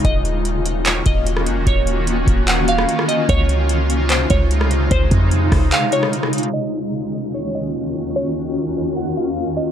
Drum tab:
HH |x---x---x---x---x---x---x---x---|x---x---x---x---x---x---x---x---|x---x---x---x---x---x---x---x---|x---x---x---o---x---x---x---xxxx|
CP |----------------x---------------|----------------x---------------|----------------x---------------|----------------x---------------|
SD |--------------------------r-----|----------------------r---r-----|--------------------------r-----|------------r---------r---r-----|
BD |o-------------------o-----------|o-----------o-------------------|o-------------------o-----------|o---o-------o-------------------|

HH |--------------------------------|--------------------------------|
CP |--------------------------------|--------------------------------|
SD |--------------------------------|--------------------------------|
BD |--------------------------------|--------------------------------|